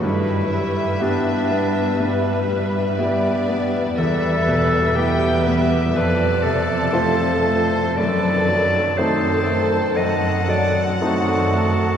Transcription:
0.02 G2 G3 E4 B4 E5
0.52 G3 E5
1.01 B3 D4 E4 G4
1.51 B3
2.00 G2 B4
2.48 G3
2.97 B3 E4 G4 D5
3.49 B3
3.97 E2 G3 A4 B4 E5
4.48 B2
4.96 G3 B3 E4 G4 B4 E5 G5
5.46 B3 E5
5.94 F2 F3 A4 B4 D5 A5
6.43 C3 A4
6.92 A3 C4 F4 C5
7.44 A3 C5
7.97 F#2 D#3 A4 B4 D5 A5
8.49 F#3
8.96 D#3 A3 C4 D#4 A4 C5 A5
9.47 A3
9.96 F#2 D#3 A4 D#5 F#5 A5
10.48 F#3 D5
11.01 D#3 A3 C4 D#4 F#4 A4 A5
11.52 A3

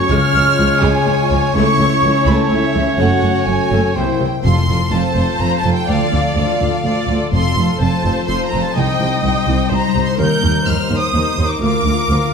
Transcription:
Already playing: F#2 C#4 F#4 A4 C#5 C#6
0.10 C#2 C#3 G#3 F4 C#5 F6
0.35 C#2 G#3
0.59 C#2 F3 F4
0.82 C#2 G#3 G#5
1.07 C#2 G#3 G#4
1.30 C#2 F3 C#4
1.54 C#2 C#3 A3 C#4 E4 C#5 C#6
1.79 C#2 A3 C#4
2.03 C#2 E3 E4
2.26 C#2 A3 B5
2.33 A5
2.38 A5
2.50 C#2 A3 A4 E5
2.74 C#2 E3
2.97 F#1 F#2 A3 F#4 C#5 F#5
3.22 F#1 F#2 A3 C#4
3.46 F#1 F#2 F#3 F#4 G#5
3.71 F#1 F#2 A3
3.95 C2 C3 A#3 E4 C5 G5
4.19 C2 C3 G3 E4 A#4
4.44 F1 F2 F3 F4 A4 C6
4.61 C4
4.67 F1 F2 F4 A4
4.78 A4
4.91 F1 F2 C4 F4 A4 C5 A5
5.10 A4
5.14 F1 F2 F4 A4
5.25 C5
5.40 F1 F2 F4 A4 A#5
5.58 C4 A5
5.63 F1 F2 F4 A4
5.74 A4 G5
5.88 D2 D3 F4 A4 D5 F5
6.06 A3
6.11 D2 F4 A4
6.20 F4
6.35 D2 A3 F4 A4 F5
6.53 F4
6.60 D2 F4 A4
6.69 A4
6.84 D2 D4 F4 A4 D5
7.02 A3
7.08 D2 F4 A4
7.18 F4
7.32 F1 F2 F3 F4 A4 C6
7.50 C4
7.57 F1 F2 F4 A4
7.65 A4
7.80 F1 F2 C4 F4 A4 C5 A5
7.97 A4
8.04 F1 F2 F4 A4
8.12 C5
8.27 F1 F2 F4 A4 C6
8.45 C4 A#5
8.51 F1 F2 F4 A4
8.60 A4 A5
8.75 C2 C3 D#4 C5 D#5 G5
8.93 G3
9.01 C2 D#4 C5
9.08 D#4
9.23 C2 G3 D#4 C5 G5
9.40 D#4
9.48 C2 D#4 C5
9.56 G4
9.71 C2 C4 D#4 C5 A#5
9.88 G3
9.95 C2 D#4 C5
10.04 D#4 C6
10.18 D#2 D#3 D#4 A#4 G6
10.36 A#3
10.43 D#2 D#4 A#4
10.52 G4
10.66 D#2 A#3 D#4 A#4 C5 F6
10.83 G4
10.90 D#2 D#4 A#4
10.99 A#4 D#6
11.14 D#2 D#4 A#4
11.31 A#3
11.38 D#2 D#4 A#4
11.46 G4 D6
11.61 D2 D3 F4 A#4 D6
11.79 D4
11.84 D2 F4 A#4
11.93 F4
12.09 D2 D4 F4 A#4
12.25 F4

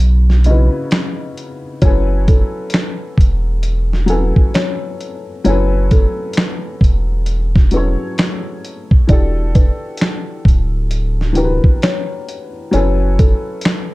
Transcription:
Already playing: B1 C#3 C#4 D#4 E4 F#4 B4
0.00 closed hi-hat
0.30 snare
0.44 C#3 C#4 D#4 E4 D#5, closed hi-hat
0.49 F#4 B4
0.91 finger snap, snare, closed hi-hat
1.37 closed hi-hat
1.82 F#1 F#3 C#4 E4 C#5 G#5, kick, closed hi-hat
1.86 A4 B4
2.28 A4, kick, closed hi-hat
2.70 finger snap, closed hi-hat
2.74 snare
3.18 E1, kick, closed hi-hat
3.63 closed hi-hat
3.93 snare
4.06 F#3 C#4 E4 A4 G#5, closed hi-hat
4.10 A4 B4
4.36 kick
4.54 C#5, finger snap, snare, closed hi-hat
5.01 closed hi-hat
5.44 F#1 F#3 C#4 E4 C#5 G#5, closed hi-hat
5.48 A4 B4
5.91 A4, kick, closed hi-hat
6.33 finger snap, closed hi-hat
6.38 snare
6.81 E1, kick, closed hi-hat
7.26 closed hi-hat
7.56 kick, snare
7.71 F#3 C#4 E4 G#4 B4, closed hi-hat
7.76 A4 C#5
8.18 finger snap, snare, closed hi-hat
8.65 closed hi-hat
8.91 kick
9.07 E1 E3 D4 F#4 G4 D5, kick, closed hi-hat
9.12 A4
9.55 B4, kick, closed hi-hat
9.97 finger snap, closed hi-hat
10.02 snare
10.45 D1, kick, closed hi-hat
10.91 closed hi-hat
11.21 snare
11.33 E3 D4 F#4 G4, closed hi-hat
11.38 A#4 B4
11.44 B4
11.64 kick
11.82 C#5, finger snap, snare, closed hi-hat
12.29 closed hi-hat
12.71 F#1 F#3 C#4 E4 C#5 G#5, closed hi-hat
12.75 A4 B4
13.19 A4, kick, closed hi-hat
13.61 finger snap, closed hi-hat
13.66 snare

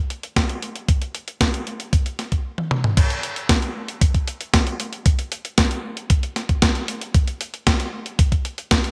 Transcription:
0.10 closed hi-hat
0.23 closed hi-hat
0.36 kick, snare, closed hi-hat
0.49 closed hi-hat
0.62 closed hi-hat
0.76 closed hi-hat
0.89 kick, closed hi-hat
1.02 closed hi-hat
1.15 closed hi-hat
1.28 closed hi-hat
1.41 kick, snare, closed hi-hat
1.54 closed hi-hat
1.67 closed hi-hat
1.80 closed hi-hat
1.93 kick, closed hi-hat
2.06 closed hi-hat
2.19 snare, closed hi-hat
2.32 kick, closed hi-hat
2.58 high tom
2.71 mid tom
2.84 mid tom
2.97 kick, closed hi-hat, crash
3.10 closed hi-hat
3.23 closed hi-hat
3.36 closed hi-hat
3.49 kick, snare, closed hi-hat
3.62 closed hi-hat
3.88 closed hi-hat
4.01 kick, closed hi-hat
4.15 kick, closed hi-hat
4.28 closed hi-hat
4.41 closed hi-hat
4.54 kick, snare, closed hi-hat
4.67 closed hi-hat
4.80 closed hi-hat
4.93 closed hi-hat
5.06 kick, closed hi-hat
5.19 closed hi-hat
5.32 closed hi-hat
5.45 closed hi-hat
5.58 kick, snare, closed hi-hat
5.71 closed hi-hat
5.97 closed hi-hat
6.10 kick, closed hi-hat
6.23 closed hi-hat
6.36 snare, closed hi-hat
6.49 kick, closed hi-hat
6.62 kick, snare, closed hi-hat
6.75 closed hi-hat
6.88 closed hi-hat
7.01 closed hi-hat
7.14 kick, closed hi-hat
7.28 closed hi-hat
7.41 closed hi-hat
7.54 closed hi-hat
7.67 kick, snare, closed hi-hat
7.80 closed hi-hat
8.06 closed hi-hat
8.19 kick, closed hi-hat
8.32 kick, closed hi-hat
8.45 closed hi-hat
8.58 closed hi-hat
8.71 kick, snare, closed hi-hat
8.84 closed hi-hat

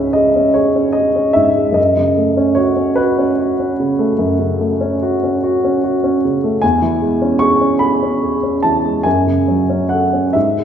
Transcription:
Already playing: C#2 G#2 G#3 C#4 G#4 E5 F#5 G#5
0.13 G#4 D#5
0.36 C#4
0.54 G#4 C#5
0.76 C#4
0.93 G#4 D#5
1.16 C#4
1.33 G#2 E5
1.56 G#3
1.72 F#2 D#5
1.97 C#3
2.17 A3
2.37 C#4
2.55 F#4 C#5
2.76 C#4
2.95 F#4 B4
3.18 C#4
3.39 F#4
3.60 C#4
3.80 C#3
3.99 A3
4.18 F#2
4.39 C#3
4.60 A3
4.81 C#4
5.02 F#4
5.24 C#4
5.43 F#4
5.64 C#4
5.84 F#4
6.04 C#4
6.25 C#3
6.44 A3
6.62 E2 G#5
6.82 E3
7.02 G#3
7.22 C#4
7.39 G#4 C#6
7.61 C#4
7.79 G#4 B5
8.03 C#4
8.23 G#4
8.43 C#4
8.63 E3 A5
8.85 G#3
9.03 F#2 G#5
9.27 C#3
9.48 F#3
9.70 C#4
9.89 A4 F#5
10.13 C#4
10.33 G#2 E5
10.58 G#3

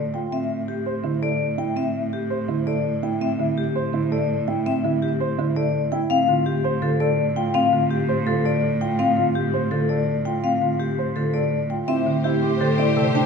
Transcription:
Already playing: A2
0.14 F4 G5
0.32 A2 C4 E5
0.68 G4
0.86 C5
1.04 D3 E4
1.22 A4 D5
1.58 E4 G5
1.76 C4 E5
2.13 G4
2.30 C5
2.48 D3 E4
2.67 A4 D5
3.03 E4 G5
3.21 C4 E5
3.39 D3 E4
3.58 G4
3.76 C5
3.94 D3 E4
4.12 A4 D5
4.48 E4 G5
4.66 C4 E5
4.84 D3 E4
5.02 G4
5.21 C5
5.38 D3 E4
5.56 A4 D5
5.92 E4 G5
6.10 A2 C4 F5
6.28 D3 F4
6.46 G4
6.64 C5
6.82 D3 F4 A4
7.00 A4 D5
7.36 F4 G5
7.54 C4 F5
7.72 D3 F4
7.91 G4
8.09 C5
8.27 D3 F4 A4
8.45 A4 D5
8.81 F4 G5
8.99 C4 F5
9.17 D3 F4
9.35 G4
9.54 C5
9.71 D3 F4 A4
9.89 A4 D5
10.25 F4 G5
10.44 C4 F5
10.62 D3 F4
10.80 G4
10.99 C5
11.16 D3 F4 A4
11.34 A4 D5
11.70 F4 G5
11.88 A2 C4 E4 G4 C5 E5
12.07 D3
12.24 E4 G4
12.43 G4
12.61 D3 A4 C5
12.78 E4 D5
12.97 C3 A4
13.15 D4 G5

